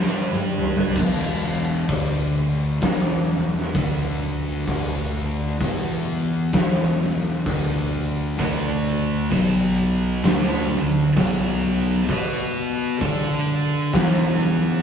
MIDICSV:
0, 0, Header, 1, 4, 480
1, 0, Start_track
1, 0, Key_signature, 1, "minor"
1, 0, Tempo, 927357
1, 498, Time_signature, 4, 2, 24, 8
1, 7672, End_track
2, 0, Start_track
2, 0, Title_t, "Distorted electric guitar"
2, 0, Program_c, 0, 30
2, 14, Note_on_c, 0, 55, 85
2, 20, Note_on_c, 0, 62, 96
2, 22, Note_on_c, 0, 67, 109
2, 491, Note_off_c, 0, 55, 0
2, 493, Note_on_c, 0, 40, 95
2, 494, Note_off_c, 0, 62, 0
2, 495, Note_off_c, 0, 67, 0
2, 499, Note_on_c, 0, 47, 106
2, 500, Note_on_c, 0, 52, 110
2, 970, Note_off_c, 0, 47, 0
2, 971, Note_off_c, 0, 40, 0
2, 972, Note_on_c, 0, 50, 110
2, 975, Note_off_c, 0, 52, 0
2, 978, Note_on_c, 0, 62, 125
2, 979, Note_on_c, 0, 57, 112
2, 1451, Note_off_c, 0, 50, 0
2, 1454, Note_off_c, 0, 62, 0
2, 1455, Note_off_c, 0, 57, 0
2, 1457, Note_on_c, 0, 40, 106
2, 1460, Note_on_c, 0, 47, 114
2, 1464, Note_on_c, 0, 52, 114
2, 1734, Note_off_c, 0, 40, 0
2, 1736, Note_off_c, 0, 47, 0
2, 1738, Note_off_c, 0, 52, 0
2, 1747, Note_on_c, 0, 40, 72
2, 1748, Note_on_c, 0, 47, 82
2, 1903, Note_off_c, 0, 40, 0
2, 1904, Note_off_c, 0, 47, 0
2, 1939, Note_on_c, 0, 50, 111
2, 1945, Note_on_c, 0, 57, 110
2, 1950, Note_on_c, 0, 62, 123
2, 2411, Note_off_c, 0, 50, 0
2, 2415, Note_off_c, 0, 57, 0
2, 2417, Note_on_c, 0, 50, 107
2, 2418, Note_off_c, 0, 62, 0
2, 2421, Note_on_c, 0, 57, 103
2, 2424, Note_on_c, 0, 62, 105
2, 2894, Note_off_c, 0, 50, 0
2, 2896, Note_off_c, 0, 57, 0
2, 2897, Note_off_c, 0, 62, 0
2, 2901, Note_on_c, 0, 52, 95
2, 2905, Note_on_c, 0, 59, 105
2, 2909, Note_on_c, 0, 64, 125
2, 3376, Note_off_c, 0, 52, 0
2, 3378, Note_off_c, 0, 59, 0
2, 3379, Note_on_c, 0, 40, 107
2, 3380, Note_off_c, 0, 64, 0
2, 3384, Note_on_c, 0, 47, 95
2, 3387, Note_on_c, 0, 52, 127
2, 3853, Note_off_c, 0, 47, 0
2, 3854, Note_off_c, 0, 40, 0
2, 3855, Note_on_c, 0, 50, 113
2, 3857, Note_off_c, 0, 52, 0
2, 3859, Note_on_c, 0, 57, 114
2, 3864, Note_on_c, 0, 62, 121
2, 4327, Note_off_c, 0, 50, 0
2, 4332, Note_off_c, 0, 57, 0
2, 4334, Note_off_c, 0, 62, 0
2, 4334, Note_on_c, 0, 50, 98
2, 4339, Note_on_c, 0, 57, 95
2, 4340, Note_on_c, 0, 62, 110
2, 4811, Note_off_c, 0, 50, 0
2, 4813, Note_off_c, 0, 57, 0
2, 4814, Note_off_c, 0, 62, 0
2, 4815, Note_on_c, 0, 47, 100
2, 4817, Note_on_c, 0, 54, 108
2, 4822, Note_on_c, 0, 59, 102
2, 5291, Note_off_c, 0, 47, 0
2, 5292, Note_off_c, 0, 54, 0
2, 5295, Note_off_c, 0, 59, 0
2, 5296, Note_on_c, 0, 50, 94
2, 5302, Note_on_c, 0, 57, 119
2, 5305, Note_on_c, 0, 62, 106
2, 5572, Note_off_c, 0, 50, 0
2, 5574, Note_off_c, 0, 57, 0
2, 5576, Note_off_c, 0, 62, 0
2, 5587, Note_on_c, 0, 50, 79
2, 5590, Note_on_c, 0, 57, 80
2, 5742, Note_off_c, 0, 50, 0
2, 5743, Note_off_c, 0, 57, 0
2, 5783, Note_on_c, 0, 47, 102
2, 5787, Note_on_c, 0, 54, 103
2, 5790, Note_on_c, 0, 59, 113
2, 6254, Note_off_c, 0, 47, 0
2, 6255, Note_off_c, 0, 54, 0
2, 6257, Note_off_c, 0, 59, 0
2, 6265, Note_on_c, 0, 59, 99
2, 6265, Note_on_c, 0, 66, 105
2, 6271, Note_on_c, 0, 71, 104
2, 6734, Note_off_c, 0, 59, 0
2, 6734, Note_off_c, 0, 66, 0
2, 6737, Note_off_c, 0, 71, 0
2, 6744, Note_on_c, 0, 62, 104
2, 6744, Note_on_c, 0, 69, 111
2, 6751, Note_on_c, 0, 74, 111
2, 7213, Note_off_c, 0, 62, 0
2, 7213, Note_off_c, 0, 69, 0
2, 7217, Note_off_c, 0, 74, 0
2, 7220, Note_on_c, 0, 52, 91
2, 7222, Note_on_c, 0, 59, 120
2, 7228, Note_on_c, 0, 64, 110
2, 7672, Note_off_c, 0, 52, 0
2, 7672, Note_off_c, 0, 59, 0
2, 7672, Note_off_c, 0, 64, 0
2, 7672, End_track
3, 0, Start_track
3, 0, Title_t, "Fingered electric bass"
3, 0, Program_c, 1, 33
3, 14, Note_on_c, 1, 43, 95
3, 476, Note_off_c, 1, 43, 0
3, 497, Note_on_c, 1, 28, 96
3, 958, Note_off_c, 1, 28, 0
3, 979, Note_on_c, 1, 38, 95
3, 1440, Note_off_c, 1, 38, 0
3, 1458, Note_on_c, 1, 28, 103
3, 1723, Note_off_c, 1, 28, 0
3, 1743, Note_on_c, 1, 28, 80
3, 1927, Note_off_c, 1, 28, 0
3, 1941, Note_on_c, 1, 38, 112
3, 2401, Note_off_c, 1, 38, 0
3, 2419, Note_on_c, 1, 38, 103
3, 2880, Note_off_c, 1, 38, 0
3, 2902, Note_on_c, 1, 40, 110
3, 3361, Note_off_c, 1, 40, 0
3, 3381, Note_on_c, 1, 28, 104
3, 3840, Note_off_c, 1, 28, 0
3, 3862, Note_on_c, 1, 38, 107
3, 4320, Note_off_c, 1, 38, 0
3, 4343, Note_on_c, 1, 38, 103
3, 4801, Note_off_c, 1, 38, 0
3, 4824, Note_on_c, 1, 35, 107
3, 5281, Note_off_c, 1, 35, 0
3, 5302, Note_on_c, 1, 38, 103
3, 5563, Note_off_c, 1, 38, 0
3, 5589, Note_on_c, 1, 38, 83
3, 5768, Note_off_c, 1, 38, 0
3, 5781, Note_on_c, 1, 35, 103
3, 6238, Note_off_c, 1, 35, 0
3, 6256, Note_on_c, 1, 47, 107
3, 6715, Note_off_c, 1, 47, 0
3, 6734, Note_on_c, 1, 50, 99
3, 7193, Note_off_c, 1, 50, 0
3, 7213, Note_on_c, 1, 40, 94
3, 7672, Note_off_c, 1, 40, 0
3, 7672, End_track
4, 0, Start_track
4, 0, Title_t, "Drums"
4, 26, Note_on_c, 9, 38, 65
4, 78, Note_off_c, 9, 38, 0
4, 163, Note_on_c, 9, 48, 68
4, 214, Note_off_c, 9, 48, 0
4, 301, Note_on_c, 9, 45, 88
4, 353, Note_off_c, 9, 45, 0
4, 396, Note_on_c, 9, 43, 91
4, 448, Note_off_c, 9, 43, 0
4, 494, Note_on_c, 9, 49, 113
4, 496, Note_on_c, 9, 36, 123
4, 546, Note_off_c, 9, 49, 0
4, 548, Note_off_c, 9, 36, 0
4, 978, Note_on_c, 9, 36, 112
4, 978, Note_on_c, 9, 46, 69
4, 1030, Note_off_c, 9, 36, 0
4, 1030, Note_off_c, 9, 46, 0
4, 1456, Note_on_c, 9, 46, 78
4, 1460, Note_on_c, 9, 36, 119
4, 1463, Note_on_c, 9, 38, 127
4, 1508, Note_off_c, 9, 46, 0
4, 1511, Note_off_c, 9, 36, 0
4, 1515, Note_off_c, 9, 38, 0
4, 1848, Note_on_c, 9, 38, 36
4, 1900, Note_off_c, 9, 38, 0
4, 1939, Note_on_c, 9, 46, 75
4, 1941, Note_on_c, 9, 36, 124
4, 1991, Note_off_c, 9, 46, 0
4, 1992, Note_off_c, 9, 36, 0
4, 2419, Note_on_c, 9, 46, 77
4, 2420, Note_on_c, 9, 36, 110
4, 2471, Note_off_c, 9, 46, 0
4, 2472, Note_off_c, 9, 36, 0
4, 2901, Note_on_c, 9, 46, 70
4, 2902, Note_on_c, 9, 36, 104
4, 2953, Note_off_c, 9, 36, 0
4, 2953, Note_off_c, 9, 46, 0
4, 3379, Note_on_c, 9, 46, 79
4, 3382, Note_on_c, 9, 36, 126
4, 3386, Note_on_c, 9, 38, 120
4, 3431, Note_off_c, 9, 46, 0
4, 3433, Note_off_c, 9, 36, 0
4, 3438, Note_off_c, 9, 38, 0
4, 3862, Note_on_c, 9, 36, 120
4, 3862, Note_on_c, 9, 46, 75
4, 3913, Note_off_c, 9, 46, 0
4, 3914, Note_off_c, 9, 36, 0
4, 4342, Note_on_c, 9, 36, 116
4, 4344, Note_on_c, 9, 46, 63
4, 4394, Note_off_c, 9, 36, 0
4, 4396, Note_off_c, 9, 46, 0
4, 4822, Note_on_c, 9, 36, 114
4, 4822, Note_on_c, 9, 46, 64
4, 4874, Note_off_c, 9, 36, 0
4, 4874, Note_off_c, 9, 46, 0
4, 5300, Note_on_c, 9, 46, 75
4, 5301, Note_on_c, 9, 36, 110
4, 5307, Note_on_c, 9, 38, 127
4, 5352, Note_off_c, 9, 46, 0
4, 5353, Note_off_c, 9, 36, 0
4, 5359, Note_off_c, 9, 38, 0
4, 5778, Note_on_c, 9, 46, 75
4, 5779, Note_on_c, 9, 36, 119
4, 5830, Note_off_c, 9, 46, 0
4, 5831, Note_off_c, 9, 36, 0
4, 6256, Note_on_c, 9, 46, 73
4, 6257, Note_on_c, 9, 36, 114
4, 6308, Note_off_c, 9, 46, 0
4, 6309, Note_off_c, 9, 36, 0
4, 6733, Note_on_c, 9, 46, 76
4, 6735, Note_on_c, 9, 36, 113
4, 6785, Note_off_c, 9, 46, 0
4, 6787, Note_off_c, 9, 36, 0
4, 7210, Note_on_c, 9, 46, 76
4, 7214, Note_on_c, 9, 36, 116
4, 7217, Note_on_c, 9, 38, 127
4, 7262, Note_off_c, 9, 46, 0
4, 7265, Note_off_c, 9, 36, 0
4, 7269, Note_off_c, 9, 38, 0
4, 7672, End_track
0, 0, End_of_file